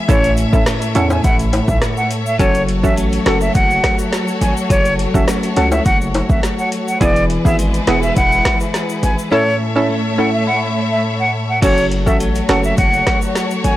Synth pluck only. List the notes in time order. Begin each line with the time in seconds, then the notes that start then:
0.09 C#4 E4 A4
0.53 C#4 E4 A4
0.95 C#4 E4 A4
2.39 C#4 F#4 A4
2.83 C#4 F#4 A4
3.26 C#4 F#4 A4
5.14 C#4 F#4 A4
5.57 C#4 F#4 A4
7.01 B3 E4 G#4
7.45 B3 E4 G#4
7.87 B3 E4 G#4
9.31 C#4 E4 A4
9.76 C#4 E4 A4
10.18 C#4 E4 A4
11.62 C#4 F#4 A4
12.06 C#4 F#4 A4
12.49 C#4 F#4 A4